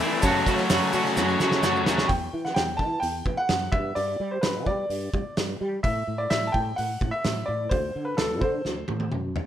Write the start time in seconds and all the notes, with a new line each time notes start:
Already playing: C5 E5
0.00 E3 A3 C4 E4, open hi-hat
0.11 shaker
0.22 F#2 C#3 F#3 A3 C#4 F#4 C#5 A5, kick, open hi-hat, shaker
0.35 shaker
0.46 F#2 C#3 F#3 A3 C#4 F#4, kick, open hi-hat, shaker
0.58 snare, shaker
0.70 F#2 C#3 F#3 A3 C#4 F#4, snare, open hi-hat, shaker
0.93 F#2 C#3 F#3 A3 C#4 F#4, open hi-hat, shaker
1.05 snare, shaker
1.16 F#2 C#3 F#3 A3 C#4 F#4, snare, shaker
1.29 shaker
1.39 F#2 C#3 F#3 A3 C#4 F#4, snare, shaker
1.51 snare, shaker
1.62 F#2 C#3 F#3 A3 C#4 F#4, snare, shaker
1.76 shaker
1.86 D#2 F#2 C#3 F#3 A3 C#4 F#4, snare, shaker
1.98 snare
2.08 E2 G5, kick, open hi-hat
2.33 E3
2.45 F#5, snare
2.54 E2 G5, snare, open hi-hat
2.77 E3 A5, kick
3.00 E2 G5, open hi-hat
3.26 E3, kick
3.37 F#5
3.49 F#2, snare, open hi-hat
3.72 G2 E5, kick
3.95 G2 D5, open hi-hat
4.20 G3
4.31 C5
4.41 G2 B4, snare, open hi-hat
4.66 G3 D5, kick
4.89 G2, open hi-hat
5.14 G3, kick
5.37 G2, snare, open hi-hat
5.61 G3
5.83 A2 E5, kick, open hi-hat
6.07 A2
6.18 D5
6.30 A2 E5, snare, open hi-hat
6.47 A5
6.52 A2 G5, kick
6.76 A2 F#5, open hi-hat
7.01 A2, kick
7.11 E5
7.24 A2, snare, open hi-hat
7.46 A2 D5
7.69 D2 C5, kick, open hi-hat
7.95 D3
8.05 B4
8.17 D2 A4, snare, open hi-hat
8.41 D3 C5, kick
8.65 D2, snare
8.88 A2, high tom
9.00 high tom
9.12 F#2, mid tom
9.36 E2, floor tom